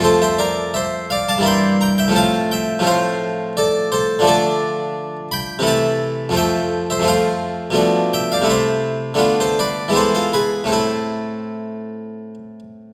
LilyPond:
<<
  \new Staff \with { instrumentName = "Harpsichord" } { \time 3/4 \key f \major \tempo 4 = 85 <a' c''>16 <c'' e''>16 <bes' d''>8 <c'' e''>8 <d'' f''>16 <f'' a''>16 <g'' c'''>8 <g'' bes''>16 <e'' g''>16 | <f'' a''>8 <e'' g''>8 <c'' f''>4 <a' d''>8 <a' c''>8 | \key a \minor <a' d''>4. <g'' b''>8 <e'' a''>4 | <e'' g''>8. <c'' e''>16 <c'' f''>4. <e'' g''>16 <d'' f''>16 |
<c'' e''>4~ <c'' e''>16 <a' c''>16 <b' d''>8 <a' c''>16 <f' a'>16 <gis' b'>8 | <e' a'>2~ <e' a'>8 r8 | }
  \new Staff \with { instrumentName = "Harpsichord" } { \time 3/4 \key f \major <f, f a c'>2 <g, e bes e'>4 | <a, f a c'>4 <a, f a c'>2 | \key a \minor <d f a d'>2 <c e a e'>4 | <f, f a c'>4 <f, f a c'>4 <b, f a d'>4 |
<c a e'>4 <d a b f'>4 <e gis b e'>4 | <a, a c'>2. | }
>>